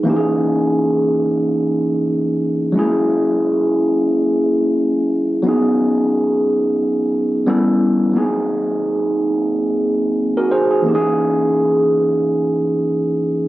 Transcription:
0.03 E3 A#3 C#4
0.08 D#4 G4
0.16 G#4
2.72 F#3 G#3 C#4
2.77 A#3 E4 G#4
5.42 F#3 B3 C#4
5.47 D#4 G#4
7.47 G3 B3 C#4 E4 A4
8.12 F#3 A#3 B3
8.16 D#4 G#4
8.22 C4
10.37 F#4 A#4
10.51 G#4 C5
10.71 G#4
10.82 E3 A#3 C#4
10.87 D#4 G4
10.95 G#4

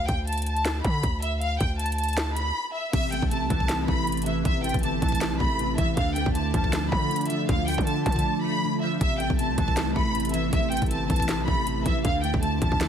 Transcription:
0.08 D2 G5, kick, closed hi-hat
0.27 A5, closed hi-hat
0.33 closed hi-hat
0.38 closed hi-hat
0.42 closed hi-hat
0.46 A5, closed hi-hat
0.57 closed hi-hat
0.65 snare, clap, closed hi-hat
0.84 D3 B5, kick, closed hi-hat
1.03 D2, kick, closed hi-hat
1.22 E5, closed hi-hat
1.41 F5, closed hi-hat
1.60 D2 G5, kick, closed hi-hat
1.79 A5, closed hi-hat
1.86 closed hi-hat
1.92 closed hi-hat
1.98 A5, closed hi-hat
2.04 closed hi-hat
2.08 closed hi-hat
2.13 closed hi-hat
2.17 snare, clap, closed hi-hat
2.36 B5, closed hi-hat
2.74 E5
2.93 A1 C3 A3 C4 E4 B4 E5, kick, closed hi-hat, crash
3.12 A3 G5, closed hi-hat
3.22 A1, kick
3.31 C3 A5, closed hi-hat
3.41 C2
3.50 C2 E3 A5, kick, closed hi-hat
3.60 kick
3.69 C3, snare, clap, closed hi-hat
3.88 A1 A3 B5, kick
4.07 C3, closed hi-hat
4.12 closed hi-hat
4.17 closed hi-hat
4.22 closed hi-hat
4.26 E3 E5, closed hi-hat
4.45 A1 C3 E5, kick, closed hi-hat
4.64 A3 G5, closed hi-hat
4.69 closed hi-hat
4.74 G1, kick, closed hi-hat
4.79 closed hi-hat
4.83 C3 A5, closed hi-hat
5.02 A1 E3 A5, kick, closed hi-hat
5.09 kick, closed hi-hat
5.15 closed hi-hat
5.21 C3, snare, clap, closed hi-hat
5.31 B1
5.40 A1 A3 B5, kick
5.59 C3, closed hi-hat
5.78 A1 E3 E5, kick, closed hi-hat
5.97 D2 D3 A3 D4 F4 D5 F5, kick, closed hi-hat
6.16 A3 G5, closed hi-hat
6.26 D2, kick
6.35 D3 A5, closed hi-hat
6.54 D2 F3 A5, kick, closed hi-hat
6.64 kick
6.73 D3, snare, clap, closed hi-hat
6.92 D3 A3 B5, kick
7.11 D3, closed hi-hat
7.16 closed hi-hat
7.21 closed hi-hat
7.25 closed hi-hat
7.30 F3 E5, closed hi-hat
7.49 D2 D3 F5, kick, closed hi-hat
7.68 A3 G5, closed hi-hat, open hi-hat
7.74 D3, kick, closed hi-hat
7.81 closed hi-hat
7.87 D3 A5, closed hi-hat
8.06 D3 F3 A5, kick, closed hi-hat
8.12 kick, closed hi-hat
8.19 closed hi-hat
8.25 D3
8.44 A3 B5
8.64 D3
8.82 F3 E5
9.01 A1 C3 C4 E4 B4 E5, kick, closed hi-hat
9.20 A3 G5, closed hi-hat
9.30 A1, kick
9.39 C3 A5, closed hi-hat
9.49 C2
9.58 C2 E3 A5, kick, closed hi-hat
9.68 kick
9.77 C3, snare, clap, closed hi-hat
9.96 A1 A3 B5, kick
10.15 C3, closed hi-hat
10.20 closed hi-hat
10.25 closed hi-hat
10.29 closed hi-hat
10.34 E3 E5, closed hi-hat
10.53 A1 C3 E5, kick, closed hi-hat
10.72 A3 G5, closed hi-hat
10.77 closed hi-hat
10.82 G1, kick
10.86 closed hi-hat
10.91 C3 A5, closed hi-hat
11.10 A1 E3 A5, kick, closed hi-hat
11.16 kick, closed hi-hat
11.22 closed hi-hat
11.29 C3, snare, clap, closed hi-hat
11.39 B1
11.48 A1 A3 B5, kick
11.67 C3, closed hi-hat
11.85 A1 E3 E5, kick, closed hi-hat
12.05 D2 D3 A3 D4 F4 D5 F5, kick, closed hi-hat
12.23 A3 G5, closed hi-hat
12.34 D2, kick
12.43 D3 A5, closed hi-hat
12.62 D2 F3 A5, kick, closed hi-hat
12.72 D2, kick
12.81 D3, snare, clap, closed hi-hat

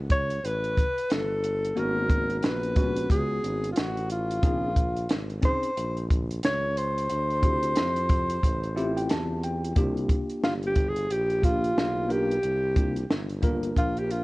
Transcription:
Already playing: C#2
0.10 C#5, kick, closed hi-hat
0.30 closed hi-hat
0.44 A1 B4, closed hi-hat
0.64 closed hi-hat
0.77 kick, closed hi-hat
0.98 closed hi-hat
1.10 G1 A4, snare, closed hi-hat
1.44 closed hi-hat
1.65 closed hi-hat
1.76 G#1 A#3 B3 C#4 F#4 A#4, closed hi-hat
2.10 kick, closed hi-hat
2.30 closed hi-hat
2.39 A#4, closed hi-hat
2.44 A#1 B4, snare
2.63 closed hi-hat
2.76 G#3 B3 C#4 F#4, kick, closed hi-hat
2.97 closed hi-hat
3.10 C#2 G#4, kick, closed hi-hat
3.44 G#1, closed hi-hat
3.64 closed hi-hat
3.73 F4, closed hi-hat
3.77 A1 F#4, snare
3.97 closed hi-hat
4.10 F4, closed hi-hat
4.31 closed hi-hat
4.42 A#1 C4 C#4 D#4 G#4, kick, closed hi-hat
4.76 kick, closed hi-hat
4.96 closed hi-hat
5.09 G#1, snare, closed hi-hat
5.30 closed hi-hat
5.42 C4 C#4 D#4 G#4 C5, kick, closed hi-hat
5.63 closed hi-hat
5.77 A#1, closed hi-hat
5.97 closed hi-hat
6.10 kick, closed hi-hat
6.30 closed hi-hat
6.43 C#2 C#5, snare, closed hi-hat
6.77 C5, closed hi-hat
6.98 closed hi-hat
7.09 D2, closed hi-hat
7.30 closed hi-hat
7.42 C4 E4 F4 G4, kick, closed hi-hat
7.63 closed hi-hat
7.76 F2, snare, closed hi-hat
7.96 closed hi-hat
8.09 kick, closed hi-hat
8.30 closed hi-hat
8.43 A1, kick, closed hi-hat
8.64 closed hi-hat
8.76 C4 E4 F4 G4 E5, closed hi-hat
8.97 G5, closed hi-hat
9.09 E2 A5, snare, closed hi-hat
9.43 G5, closed hi-hat
9.64 closed hi-hat
9.76 C2 A#3 D4 F4 G4, kick, closed hi-hat
9.97 closed hi-hat
10.10 kick, closed hi-hat
10.30 closed hi-hat
10.43 G1 F4, snare
10.63 G4, closed hi-hat
10.76 kick, closed hi-hat
10.89 G#4
10.96 closed hi-hat
11.11 A#1 G4, closed hi-hat
11.30 closed hi-hat
11.42 A#3 D4 F4 G4, kick, closed hi-hat
11.64 closed hi-hat
11.77 B1, snare
12.08 A#3 D4 F4 G4 A#4, closed hi-hat
12.31 closed hi-hat
12.43 C2, closed hi-hat
12.75 A#3 D4 F4 G4, kick, closed hi-hat
12.96 closed hi-hat
13.10 G1, snare
13.30 closed hi-hat
13.42 A#3 D4 F4 A#4, kick, closed hi-hat
13.63 closed hi-hat
13.77 A#1 F4, kick, closed hi-hat
13.97 G4, closed hi-hat
14.11 F4, closed hi-hat

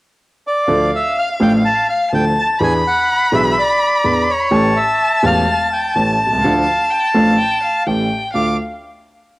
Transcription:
0.47 D5
0.67 D2 D3 F3 A3 D4 A4 F5
0.95 E5
1.18 F5
1.40 A1 A2 F3 A3 D4 A4 G5
1.65 A5
1.89 F5
2.11 D2 D3 F3 A3 D4 A4 G5 A5
2.39 A5
2.59 E2 E3 B3 D4 G#4 B5
2.63 G#5
2.87 F#5
3.32 B1 B2 E3 B3 D4 G#4 E5
3.51 E5
3.58 D5
4.04 E2 E3 B3 D4 G#4
4.30 C#5
4.51 A1 A2 E3 A3 C#4 G4 A5
4.77 E5
5.23 E1 E2 E3 A3 C#4 G4 F5
5.73 G5
5.95 A1 A2 E3 A3 C#4 G4 A5
6.26 B1
6.33 C2
6.37 C#2
6.42 D2 D3 F3 A3 D4 A4 F5
6.91 G5
7.14 A1 A2 F3 A3 D4 A4 F5
7.39 G5
7.63 F5
7.87 A1 A2 E3 A3 C#4 G4 G5
8.33 D2 A3 D4 F4 F5 D6

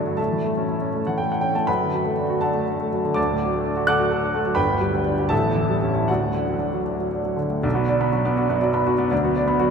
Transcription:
Already playing: F#2 D3 F#3 A3 D4 C#5 A5 C#6
0.07 F#4
0.17 A2 A4 E5 A5
0.32 E3
0.45 A3
0.57 C#4
0.68 E4
0.81 C#4
0.94 A3
1.07 E3 F#5
1.18 A3 G5
1.32 E4 F#5
1.41 C#4 G5
1.55 A3 A5
1.67 F#2 B4 F#5 B5
1.81 D3
1.93 F#3
2.05 A3
2.18 D4
2.30 F#4
2.41 D4 A4 F#5 A5
2.54 A3
2.66 D4
2.80 A3
2.93 F#3
3.05 D3
3.14 D2 D5 A5 D6
3.30 A2
3.43 F#3
3.54 A3
3.65 D4
3.77 F#4
3.87 A4 F#5 D6 F#6
3.99 F#4
4.11 A4
4.22 D4
4.34 A3
4.45 F#3
4.55 G1 B4 G5 B5
4.68 D2
4.80 G3
4.93 D2
5.05 D4
5.19 G4
5.29 A1 A4 E5 A5
5.43 E2
5.56 E3
5.70 G3
5.83 C#4
5.95 E4
6.08 D2 F#4 D5 F#5
6.21 A2
6.33 D3
6.47 F#3
6.59 D4
6.72 F#3
6.86 D4
6.99 F#3
7.13 D4
7.24 F#3
7.36 D3
7.49 A2
7.63 B1 D5
7.74 B3 F#4
7.88 D4 D5
8.01 B3 B5
8.12 F#3 F#4
8.25 B3 D5
8.37 D4 F#4
8.49 F#2 B3
8.61 F#3 D5
8.74 B3 B5
8.87 D4 F#4
8.98 B3 D5
9.11 D2 D5
9.24 B3 F#4
9.36 D4 D5
9.47 B3 B5
9.59 F#3 F#4

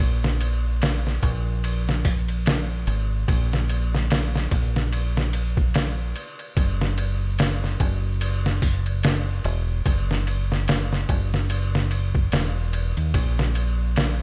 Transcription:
0.00 A#1
0.24 snare
0.41 ride
0.82 snare, ride
1.07 snare
1.23 A#1, kick, ride
1.64 ride
1.89 snare
2.05 kick, open hi-hat
2.28 ride
2.46 snare, ride
2.87 G#1, ride
3.28 A#1, kick, ride
3.53 snare
3.69 ride
3.94 snare
4.10 snare, ride
4.35 snare
4.51 A#1, kick, ride
4.76 snare
4.92 ride
5.17 snare
5.33 ride
5.57 kick
5.74 snare, ride
6.16 ride
6.39 ride
6.57 F#1, kick, ride
6.81 snare
6.98 ride
7.39 snare, ride
7.64 snare
7.80 F#1, kick, ride
8.21 ride
8.46 snare
8.62 kick, open hi-hat
8.86 ride
9.03 snare, ride
9.44 E1, ride
9.86 F#1, kick, ride
10.11 snare
10.27 ride
10.52 snare
10.68 snare, ride
10.93 snare
11.09 F#1, kick, ride
11.34 snare
11.50 ride
11.75 snare
11.91 ride
12.15 kick
12.32 E1, snare, ride
12.73 ride
12.97 D#2, ride
13.14 A#1, kick, ride
13.39 snare
13.55 ride
13.96 snare, ride

